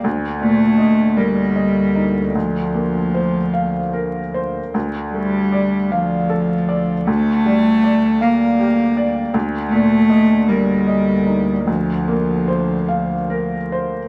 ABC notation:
X:1
M:6/8
L:1/8
Q:3/8=51
K:Bb
V:1 name="Felt piano"
D,, B,, e B e E | D,, B, c f B c | D,, A, d f A d | D,, G, d f G d |
D,, B,, e B e E | D,, B, c f B c |]
V:2 name="Cello" clef=bass
z A,2 G,3 | F,4- F, z | z G,2 F,3 | A,3 B,3 |
z A,2 G,3 | F,4- F, z |]
V:3 name="Double bass" clef=bass
D,,6- | D,,6 | D,,6- | D,,6 |
D,,6- | D,,6 |]